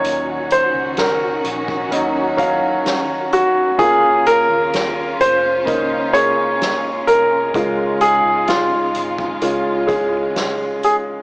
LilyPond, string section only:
\new Staff \with { instrumentName = "String section" } { \time 4/4 \key des \major \tempo 4 = 64 << { <ees ges'>1 | <des' f'>1 | <des f'>1 | } \\ { des'1 | bes2 aes2~ | aes1 | } >> }